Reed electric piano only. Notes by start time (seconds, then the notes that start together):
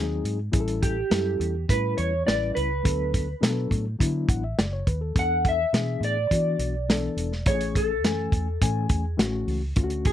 Already playing: F#3 C4 D#4 G#4
0.52 G3 C#4 E4 G#4
0.60 A4
1.10 G3 C#4 E4 A4
1.68 G3 C#4 E4 B4
2.26 G3 C#4 E4 B4
2.83 F#3 B3 D4 A4
3.41 F3 B3 D4 A4
3.46 F#3
3.99 F#3 B3 D4 E4
4.29 F#5
4.44 E5
4.58 D5
4.73 C#5
4.87 B4
5.01 A4
5.15 E3 B3 D4 A4
5.73 E3 B3 D4 G#4
6.31 E3 B3 D4 F#4
6.89 E3 B3 D4 A4
7.47 E3 A3 C4 G#4
7.55 C#4
8.04 E3 A3 C#4 G#5
8.61 E3 A3 C#4 G#5
9.17 E3 A3 C#4 F#4
9.76 D3 A3 C#4 F4
9.84 F#4